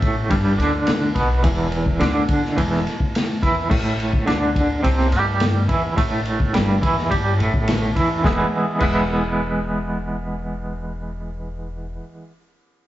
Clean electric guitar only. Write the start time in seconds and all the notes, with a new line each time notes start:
Already playing: A2 A3
0.29 G2 G3
0.58 D3 D4
1.14 B2 B3
1.43 E2 E3
2.00 D3 D4
2.57 E2 E3
3.42 E3 E4
3.70 A2 A3
4.26 D3 D4
4.83 C3 C4
5.12 G3 G4
5.68 E3 E4
5.96 A2 A3
6.53 G2 G3
6.81 E3 E4
7.10 G3 G4
7.37 A2 A3
7.95 E3 E4
8.23 E3 G#3 B3 E4
8.79 E3 G#3 B3
8.83 E4